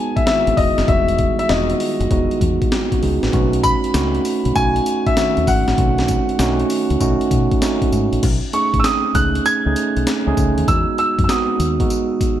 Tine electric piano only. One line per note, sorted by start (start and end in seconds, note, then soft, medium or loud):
0.00 0.26 G#3 medium
0.00 0.27 B3 medium
0.00 1.49 D#4 medium
0.00 0.34 F#4 medium
0.00 3.02 G#4 medium
0.26 0.78 D#3 medium
0.26 0.77 G#3 medium
0.26 0.77 B3 medium
0.26 0.36 E4 medium
0.34 0.81 F#4 medium
0.88 1.39 D#3 medium
0.88 0.96 G3 medium
0.88 1.39 B3 medium
0.88 1.39 F#4 medium
0.94 1.42 G#3 medium
1.49 2.00 G#3 medium
1.49 2.00 B3 medium
1.49 2.00 D#4 medium
1.49 1.58 F4 medium
1.56 2.03 F#4 medium
2.10 2.61 G#3 medium
2.10 2.61 B3 medium
2.10 2.61 D#4 medium
2.10 2.62 F#4 medium
2.92 3.02 C#4 medium
2.92 3.02 F#4 medium
3.02 3.22 D#4 medium
3.02 3.22 G#4 medium
3.23 3.33 F#4 medium
3.23 3.52 B4 medium
3.32 3.83 A3 medium
3.32 3.83 C#4 medium
3.32 3.84 D#4 medium
3.32 3.84 F#4 loud
3.94 4.45 A3 medium
3.94 4.45 C#4 medium
3.94 4.45 D#4 medium
3.94 4.45 F#4 loud
4.55 5.06 A3 medium
4.55 5.06 C#4 medium
4.55 5.06 D#4 medium
4.55 5.06 F#4 medium
5.16 5.67 D#3 medium
5.16 5.67 A3 medium
5.16 5.67 C#4 medium
5.16 5.68 F#4 medium
5.77 6.28 A3 medium
5.77 6.28 C#4 medium
5.77 6.29 D#4 medium
5.77 6.29 F#4 medium
6.38 6.89 A3 loud
6.38 6.90 C#4 loud
6.38 6.90 D#4 loud
6.38 6.90 F#4 loud
7.00 7.51 A3 medium
7.00 7.51 C#4 medium
7.00 7.51 D#4 medium
7.00 7.51 F#4 loud
7.61 8.12 A3 medium
7.61 8.12 C#4 medium
7.61 8.12 D#4 medium
7.61 8.12 F#4 loud
8.53 9.04 A3 medium
8.53 9.04 C#4 medium
8.53 9.04 D#4 medium
8.53 9.04 G#4 medium
9.14 9.50 A3 medium
9.14 9.50 C#4 medium
9.14 9.50 D#4 medium
9.14 9.50 G#4 medium
9.65 10.06 A3 medium
9.65 10.06 C#4 medium
9.65 10.07 D#4 medium
9.65 10.07 G#4 loud
10.27 10.60 A3 loud
10.27 10.60 C#4 medium
10.27 10.60 D#4 medium
10.27 10.60 G#4 loud
10.68 11.18 G#3 medium
10.68 11.18 B3 medium
10.68 11.18 D#4 medium
10.68 11.19 F#4 medium
11.29 11.64 G#3 medium
11.29 11.64 B3 medium
11.29 11.65 D#4 medium
11.29 11.65 F#4 medium
11.79 12.20 G#3 medium
11.79 12.21 B3 medium
11.79 12.21 D#4 medium
11.79 12.21 F#4 medium